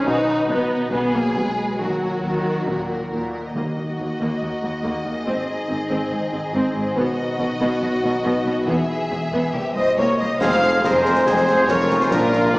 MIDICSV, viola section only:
0, 0, Header, 1, 2, 480
1, 0, Start_track
1, 0, Key_signature, -6, "minor"
1, 0, Tempo, 434783
1, 74, Time_signature, 4, 2, 24, 8
1, 4395, Tempo, 425834
1, 9675, Tempo, 431344
1, 14040, End_track
2, 0, Start_track
2, 0, Title_t, "Viola section"
2, 0, Program_c, 0, 48
2, 62, Note_on_c, 0, 63, 86
2, 540, Note_on_c, 0, 59, 77
2, 541, Note_off_c, 0, 63, 0
2, 1002, Note_off_c, 0, 59, 0
2, 1015, Note_on_c, 0, 59, 74
2, 1250, Note_off_c, 0, 59, 0
2, 1268, Note_on_c, 0, 58, 66
2, 1501, Note_off_c, 0, 58, 0
2, 1504, Note_on_c, 0, 56, 60
2, 1972, Note_on_c, 0, 54, 66
2, 1973, Note_off_c, 0, 56, 0
2, 3432, Note_off_c, 0, 54, 0
2, 3922, Note_on_c, 0, 58, 42
2, 4143, Note_off_c, 0, 58, 0
2, 4401, Note_on_c, 0, 58, 30
2, 4491, Note_off_c, 0, 58, 0
2, 4637, Note_on_c, 0, 58, 43
2, 4854, Note_off_c, 0, 58, 0
2, 4868, Note_on_c, 0, 58, 31
2, 4958, Note_off_c, 0, 58, 0
2, 5117, Note_on_c, 0, 58, 36
2, 5207, Note_off_c, 0, 58, 0
2, 5358, Note_on_c, 0, 58, 41
2, 5582, Note_off_c, 0, 58, 0
2, 5602, Note_on_c, 0, 58, 38
2, 5692, Note_off_c, 0, 58, 0
2, 5829, Note_on_c, 0, 60, 51
2, 6057, Note_off_c, 0, 60, 0
2, 6307, Note_on_c, 0, 60, 41
2, 6397, Note_off_c, 0, 60, 0
2, 6555, Note_on_c, 0, 60, 50
2, 6779, Note_off_c, 0, 60, 0
2, 6794, Note_on_c, 0, 60, 39
2, 6885, Note_off_c, 0, 60, 0
2, 7036, Note_on_c, 0, 60, 44
2, 7126, Note_off_c, 0, 60, 0
2, 7275, Note_on_c, 0, 60, 54
2, 7498, Note_off_c, 0, 60, 0
2, 7511, Note_on_c, 0, 60, 49
2, 7601, Note_off_c, 0, 60, 0
2, 7745, Note_on_c, 0, 59, 59
2, 7972, Note_off_c, 0, 59, 0
2, 8240, Note_on_c, 0, 59, 41
2, 8330, Note_off_c, 0, 59, 0
2, 8472, Note_on_c, 0, 59, 57
2, 8695, Note_off_c, 0, 59, 0
2, 8721, Note_on_c, 0, 59, 48
2, 8811, Note_off_c, 0, 59, 0
2, 8951, Note_on_c, 0, 59, 48
2, 9042, Note_off_c, 0, 59, 0
2, 9187, Note_on_c, 0, 59, 59
2, 9414, Note_off_c, 0, 59, 0
2, 9448, Note_on_c, 0, 59, 49
2, 9538, Note_off_c, 0, 59, 0
2, 9687, Note_on_c, 0, 59, 62
2, 9904, Note_off_c, 0, 59, 0
2, 10159, Note_on_c, 0, 59, 38
2, 10248, Note_off_c, 0, 59, 0
2, 10409, Note_on_c, 0, 59, 56
2, 10630, Note_off_c, 0, 59, 0
2, 10642, Note_on_c, 0, 58, 36
2, 10731, Note_off_c, 0, 58, 0
2, 10893, Note_on_c, 0, 58, 37
2, 10982, Note_off_c, 0, 58, 0
2, 11140, Note_on_c, 0, 58, 50
2, 11363, Note_off_c, 0, 58, 0
2, 11381, Note_on_c, 0, 58, 41
2, 11470, Note_off_c, 0, 58, 0
2, 11616, Note_on_c, 0, 68, 68
2, 11625, Note_on_c, 0, 60, 63
2, 11705, Note_off_c, 0, 68, 0
2, 11714, Note_off_c, 0, 60, 0
2, 11867, Note_on_c, 0, 60, 56
2, 11867, Note_on_c, 0, 68, 55
2, 11956, Note_off_c, 0, 60, 0
2, 11956, Note_off_c, 0, 68, 0
2, 12089, Note_on_c, 0, 60, 59
2, 12093, Note_on_c, 0, 68, 59
2, 12178, Note_off_c, 0, 60, 0
2, 12183, Note_off_c, 0, 68, 0
2, 12317, Note_on_c, 0, 60, 54
2, 12318, Note_on_c, 0, 68, 57
2, 12406, Note_off_c, 0, 60, 0
2, 12407, Note_off_c, 0, 68, 0
2, 12550, Note_on_c, 0, 68, 60
2, 12555, Note_on_c, 0, 60, 62
2, 12639, Note_off_c, 0, 68, 0
2, 12644, Note_off_c, 0, 60, 0
2, 12796, Note_on_c, 0, 68, 56
2, 12799, Note_on_c, 0, 60, 60
2, 12885, Note_off_c, 0, 68, 0
2, 12888, Note_off_c, 0, 60, 0
2, 13031, Note_on_c, 0, 60, 57
2, 13036, Note_on_c, 0, 68, 60
2, 13120, Note_off_c, 0, 60, 0
2, 13125, Note_off_c, 0, 68, 0
2, 13271, Note_on_c, 0, 60, 58
2, 13275, Note_on_c, 0, 68, 60
2, 13360, Note_off_c, 0, 60, 0
2, 13364, Note_off_c, 0, 68, 0
2, 13515, Note_on_c, 0, 62, 73
2, 13516, Note_on_c, 0, 65, 67
2, 13604, Note_off_c, 0, 62, 0
2, 13605, Note_off_c, 0, 65, 0
2, 13750, Note_on_c, 0, 62, 54
2, 13751, Note_on_c, 0, 65, 54
2, 13839, Note_off_c, 0, 62, 0
2, 13840, Note_off_c, 0, 65, 0
2, 13994, Note_on_c, 0, 62, 62
2, 13997, Note_on_c, 0, 65, 67
2, 14040, Note_off_c, 0, 62, 0
2, 14040, Note_off_c, 0, 65, 0
2, 14040, End_track
0, 0, End_of_file